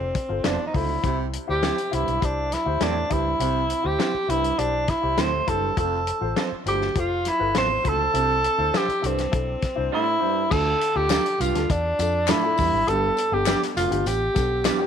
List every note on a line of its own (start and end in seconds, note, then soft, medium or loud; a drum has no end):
0.00 0.11 F1 medium
0.00 0.47 C4 medium
0.00 0.13 F4 medium
0.00 0.13 A4 medium
0.00 0.13 C5 medium
0.15 kick loud
0.15 closed hi-hat medium
0.29 0.40 G1 medium
0.29 0.57 F4 medium
0.29 0.57 A4 medium
0.29 0.57 C5 medium
0.44 0.56 F1 medium
0.44 0.68 E2 medium
0.44 0.56 C4 medium
0.44 0.66 D4 medium
0.44 0.56 F4 medium
0.44 0.56 A4 medium
0.44 0.56 C5 medium
0.44 snare loud
0.44 closed hi-hat medium
0.67 0.77 D#4 medium
0.73 0.96 C#2 medium
0.73 0.98 D2 medium
0.73 1.22 E4 medium
0.73 0.92 F4 medium
0.73 0.92 A4 medium
0.73 0.92 C5 medium
0.73 kick medium
0.73 open hi-hat soft
1.03 1.36 C2 loud
1.03 1.88 C3 medium
1.03 1.27 C3 medium
1.03 1.31 E4 medium
1.03 1.31 G4 medium
1.03 1.31 C5 medium
1.03 kick loud
1.03 closed hi-hat medium
1.33 closed hi-hat medium
1.47 1.70 D2 medium
1.47 1.75 E4 medium
1.47 1.75 G4 medium
1.47 1.96 G4 medium
1.47 1.76 C5 medium
1.63 1.74 C4 medium
1.63 1.74 E4 medium
1.63 1.75 G4 medium
1.63 1.75 C5 medium
1.63 snare medium
1.63 closed hi-hat medium
1.78 closed hi-hat soft
1.91 2.03 C2 medium
1.91 2.16 G2 medium
1.91 2.10 E4 medium
1.91 2.26 E4 medium
1.91 2.10 G4 medium
1.91 2.11 C5 medium
1.91 closed hi-hat medium
2.08 2.18 B1 medium
2.08 closed hi-hat soft
2.20 2.54 C2 medium
2.20 2.49 E4 medium
2.20 2.49 G4 medium
2.20 2.49 C5 medium
2.20 kick loud
2.20 closed hi-hat medium
2.25 2.55 D4 medium
2.52 2.85 E4 medium
2.52 snare soft
2.52 closed hi-hat medium
2.66 2.77 D2 medium
2.66 2.94 E4 medium
2.66 2.94 G4 medium
2.66 2.94 C5 medium
2.80 3.02 E2 medium
2.80 3.04 A2 medium
2.80 2.93 C4 medium
2.80 3.14 D4 medium
2.80 2.93 E4 medium
2.80 2.93 G4 medium
2.80 2.93 C5 medium
2.80 snare loud
2.80 closed hi-hat medium
3.10 3.33 C#2 medium
3.10 3.34 G2 medium
3.10 3.29 E4 medium
3.10 3.88 E4 medium
3.10 3.29 G4 medium
3.10 3.29 C5 medium
3.10 kick medium
3.10 closed hi-hat medium
3.40 3.72 C2 medium
3.40 3.64 C3 medium
3.40 4.25 C3 medium
3.40 3.68 E4 medium
3.40 3.68 G4 medium
3.40 3.68 C5 medium
3.40 closed hi-hat medium
3.70 closed hi-hat medium
3.83 3.95 D2 medium
3.83 4.12 E4 medium
3.83 4.12 G4 medium
3.83 4.32 G4 medium
3.83 4.12 C5 medium
3.99 4.11 C4 medium
3.99 4.11 E4 medium
3.99 4.12 G4 medium
3.99 4.12 C5 medium
3.99 snare loud
3.99 closed hi-hat medium
4.14 muted fingered electric bass stroke soft
4.28 4.50 C2 medium
4.28 4.53 G2 medium
4.28 4.47 E4 medium
4.28 4.60 E4 medium
4.28 4.47 G4 medium
4.28 4.47 C5 medium
4.28 closed hi-hat medium
4.44 closed hi-hat soft
4.58 4.91 B1 medium
4.58 4.91 D4 medium
4.58 4.86 E4 medium
4.58 4.86 G4 medium
4.58 4.87 C5 medium
4.58 closed hi-hat medium
4.88 5.21 E4 loud
4.88 kick medium
4.88 snare soft
4.88 closed hi-hat medium
5.02 5.14 C2 medium
5.02 5.30 E4 medium
5.02 5.31 G4 medium
5.02 5.31 C5 medium
5.17 5.39 D2 medium
5.17 5.42 A2 medium
5.17 5.30 C4 medium
5.17 5.30 E4 medium
5.17 5.30 G4 medium
5.17 5.30 C5 medium
5.17 5.50 C5 loud
5.17 snare loud
5.17 closed hi-hat loud
5.47 5.69 F#1 medium
5.47 5.72 G2 medium
5.47 5.66 E4 medium
5.47 5.66 G4 medium
5.47 5.78 A4 medium
5.47 5.67 C5 medium
5.47 kick medium
5.47 closed hi-hat medium
5.77 6.10 F1 loud
5.77 6.01 F2 medium
5.77 6.05 F4 medium
5.77 6.05 A4 medium
5.77 6.36 A4 medium
5.77 6.06 C5 medium
5.77 kick loud
5.77 closed hi-hat medium
6.07 closed hi-hat medium
6.21 6.32 A1 medium
6.21 6.49 F4 medium
6.21 6.49 A4 medium
6.21 6.50 C5 medium
6.36 6.48 C4 medium
6.36 6.48 F4 medium
6.36 6.49 A4 medium
6.36 6.49 C5 medium
6.36 snare loud
6.36 closed hi-hat medium
6.52 muted fingered electric bass stroke soft
6.66 6.87 G1 medium
6.66 6.90 D2 medium
6.66 6.85 F4 medium
6.66 7.01 G4 medium
6.66 6.85 A4 medium
6.66 6.85 C5 medium
6.66 closed hi-hat medium
6.81 snare soft
6.95 7.28 F1 medium
6.95 7.23 F4 medium
6.95 7.24 A4 medium
6.95 7.24 C5 medium
6.95 kick loud
6.95 closed hi-hat medium
7.00 7.30 F4 loud
7.25 7.57 E4 loud
7.25 snare soft
7.25 closed hi-hat medium
7.40 7.51 G1 medium
7.40 7.68 F4 medium
7.40 7.68 A4 medium
7.40 7.68 B4 medium
7.55 7.77 A1 loud
7.55 7.79 E2 medium
7.55 7.67 C4 medium
7.55 7.67 F4 medium
7.55 7.67 A4 medium
7.55 7.67 C5 medium
7.55 7.90 C5 loud
7.55 snare loud
7.55 closed hi-hat medium
7.83 8.06 C#2 medium
7.83 8.08 D2 medium
7.83 8.03 F4 medium
7.83 8.03 A4 medium
7.83 8.03 C5 medium
7.83 kick medium
7.83 closed hi-hat medium
7.88 8.79 A4 loud
8.13 8.46 C2 medium
8.13 8.99 C3 medium
8.13 8.39 C3 medium
8.13 8.41 D4 medium
8.13 8.42 E4 medium
8.13 8.42 C5 medium
8.13 closed hi-hat medium
8.44 closed hi-hat medium
8.58 8.69 D2 medium
8.58 8.86 D4 medium
8.58 8.86 E4 medium
8.58 8.86 C5 medium
8.74 8.85 G3 medium
8.74 8.86 D4 medium
8.74 8.86 E4 medium
8.74 9.09 G4 loud
8.74 8.86 C5 medium
8.74 snare loud
8.74 closed hi-hat medium
8.88 muted fingered electric bass stroke soft
8.88 closed hi-hat soft
9.02 9.25 C2 medium
9.02 9.27 G2 medium
9.02 9.21 D4 medium
9.02 9.21 E4 medium
9.02 9.21 A4 medium
9.02 closed hi-hat medium
9.07 9.94 C4 medium
9.18 snare soft
9.18 closed hi-hat soft
9.31 9.54 B1 loud
9.31 9.60 D4 medium
9.31 9.60 E4 medium
9.31 9.60 A4 medium
9.31 kick loud
9.31 closed hi-hat medium
9.62 muted fingered electric bass stroke soft
9.62 kick medium
9.62 snare soft
9.62 closed hi-hat medium
9.76 9.88 C2 medium
9.76 10.04 D4 medium
9.76 10.04 E4 medium
9.76 10.05 C5 medium
9.92 10.16 A2 medium
9.92 10.04 G3 medium
9.92 10.04 D4 medium
9.92 10.04 E4 medium
9.92 10.53 E4 medium
9.92 10.05 C5 medium
10.20 10.45 G2 medium
10.20 10.39 D4 medium
10.20 10.40 E4 medium
10.20 10.40 C5 medium
10.50 10.75 D2 medium
10.50 10.73 D2 medium
10.50 11.36 D3 medium
10.50 10.79 D4 medium
10.50 10.79 F4 medium
10.50 10.79 A4 medium
10.50 10.98 A4 loud
10.50 kick loud
10.50 crash medium
10.81 closed hi-hat medium
10.95 11.17 D2 medium
10.95 11.32 D4 medium
10.95 11.33 F4 medium
10.95 11.43 G4 loud
10.95 11.33 A4 medium
11.10 11.22 D4 medium
11.10 11.22 F4 medium
11.10 11.23 A4 medium
11.10 11.23 D5 medium
11.10 snare loud
11.10 clap medium
11.10 closed hi-hat medium
11.10 tambourine medium
11.26 closed hi-hat soft
11.40 11.51 C2 loud
11.40 11.63 G2 medium
11.40 11.73 F4 medium
11.40 closed hi-hat medium
11.40 tambourine medium
11.55 11.66 D2 medium
11.55 11.83 D4 medium
11.55 11.83 F4 medium
11.55 11.83 A4 medium
11.55 snare soft
11.55 closed hi-hat soft
11.70 11.91 E2 medium
11.70 12.31 D4 medium
11.70 kick loud
11.70 closed hi-hat medium
11.70 tambourine medium
11.99 12.31 F2 medium
11.99 12.27 D4 medium
11.99 12.27 F4 medium
11.99 12.27 A4 medium
11.99 closed hi-hat medium
11.99 tambourine medium
12.28 12.52 A2 medium
12.28 12.40 D4 medium
12.28 12.90 E4 loud
12.28 12.40 F4 medium
12.28 12.41 A4 medium
12.28 12.41 D5 medium
12.28 snare loud
12.28 clap medium
12.28 closed hi-hat medium
12.28 tambourine medium
12.43 12.71 D4 medium
12.43 12.71 F4 medium
12.43 12.71 A4 medium
12.58 12.70 E2 medium
12.58 12.82 G2 medium
12.58 kick medium
12.58 open hi-hat soft
12.58 tambourine medium
12.73 12.84 G#1 medium
12.87 13.09 G1 medium
12.87 13.11 G2 medium
12.87 13.73 G2 medium
12.87 13.16 B3 medium
12.87 13.16 D4 medium
12.87 13.16 G4 medium
12.87 13.35 A4 loud
12.87 closed hi-hat medium
13.17 closed hi-hat medium
13.17 tambourine soft
13.32 13.53 G1 medium
13.32 13.69 B3 medium
13.32 13.69 D4 medium
13.32 13.64 G4 loud
13.32 13.69 A4 medium
13.46 13.59 D4 medium
13.46 13.59 G4 medium
13.46 13.59 B4 medium
13.46 13.60 D5 medium
13.46 snare loud
13.46 clap medium
13.46 closed hi-hat medium
13.46 tambourine medium
13.63 snare soft
13.63 closed hi-hat medium
13.76 13.87 F1 medium
13.76 14.00 D2 medium
13.76 14.09 F4 medium
13.76 closed hi-hat medium
13.76 tambourine medium
13.90 14.02 G1 medium
13.90 14.19 B3 medium
13.90 14.19 D4 medium
13.90 14.19 G4 medium
13.90 closed hi-hat soft
14.06 14.27 A1 medium
14.06 14.87 G4 medium
14.06 closed hi-hat medium
14.06 tambourine soft
14.34 14.68 B1 medium
14.34 14.63 B3 medium
14.34 14.63 D4 medium
14.34 14.63 A4 medium
14.34 kick loud
14.34 snare soft
14.34 closed hi-hat medium
14.34 tambourine medium
14.65 14.87 E2 medium
14.65 14.77 D4 medium
14.65 14.77 G4 medium
14.65 14.77 B4 medium
14.65 14.77 D5 medium
14.65 snare loud
14.65 clap loud
14.65 closed hi-hat loud
14.65 tambourine medium
14.79 14.87 B3 medium
14.79 14.87 D4 medium
14.79 14.87 G4 medium